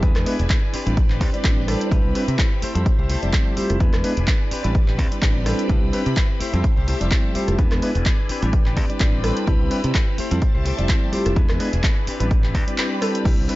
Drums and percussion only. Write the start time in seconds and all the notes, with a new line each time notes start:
0.03 kick, closed hi-hat
0.16 cross-stick, clap
0.26 open hi-hat
0.39 closed hi-hat
0.50 kick, clap, closed hi-hat
0.74 open hi-hat
0.87 closed hi-hat
0.97 kick, closed hi-hat
1.10 clap
1.21 kick, open hi-hat
1.34 closed hi-hat
1.44 kick, clap, closed hi-hat
1.68 cross-stick, open hi-hat
1.81 closed hi-hat
1.91 kick, closed hi-hat
2.15 open hi-hat
2.28 closed hi-hat
2.39 kick, clap, closed hi-hat
2.62 open hi-hat
2.75 closed hi-hat
2.86 kick, closed hi-hat
3.10 open hi-hat
3.23 closed hi-hat
3.33 kick, clap, closed hi-hat
3.57 open hi-hat
3.70 cross-stick, closed hi-hat
3.80 kick, closed hi-hat
3.93 cross-stick, clap
4.04 open hi-hat
4.17 closed hi-hat
4.27 kick, clap, closed hi-hat
4.51 open hi-hat
4.64 closed hi-hat
4.75 kick, closed hi-hat
4.88 clap
4.99 kick, open hi-hat
5.12 closed hi-hat
5.22 kick, clap, closed hi-hat
5.46 cross-stick, open hi-hat
5.59 closed hi-hat
5.69 kick, closed hi-hat
5.93 open hi-hat
6.06 closed hi-hat
6.17 kick, clap, closed hi-hat
6.41 open hi-hat
6.54 closed hi-hat
6.64 kick, closed hi-hat
6.88 open hi-hat
7.01 closed hi-hat
7.11 kick, clap, closed hi-hat
7.35 open hi-hat
7.48 cross-stick, closed hi-hat
7.59 kick, closed hi-hat
7.72 cross-stick, clap
7.82 open hi-hat
7.95 closed hi-hat
8.06 kick, clap, closed hi-hat
8.29 open hi-hat
8.42 closed hi-hat
8.53 kick, closed hi-hat
8.66 clap
8.77 kick, open hi-hat
8.90 closed hi-hat
9.00 kick, clap, closed hi-hat
9.24 cross-stick, open hi-hat
9.37 closed hi-hat
9.47 kick, closed hi-hat
9.71 open hi-hat
9.84 closed hi-hat
9.95 kick, clap, closed hi-hat
10.18 open hi-hat
10.31 closed hi-hat
10.42 kick, closed hi-hat
10.66 open hi-hat
10.79 closed hi-hat
10.89 kick, clap, closed hi-hat
11.13 open hi-hat
11.26 cross-stick, closed hi-hat
11.36 kick, closed hi-hat
11.49 cross-stick, clap
11.60 open hi-hat
11.73 closed hi-hat
11.84 kick, clap, closed hi-hat
12.07 open hi-hat
12.20 closed hi-hat
12.31 kick, closed hi-hat
12.44 clap
12.55 kick, open hi-hat
12.68 closed hi-hat
12.78 clap, closed hi-hat
13.02 cross-stick, open hi-hat
13.15 closed hi-hat
13.25 kick, closed hi-hat, crash
13.49 open hi-hat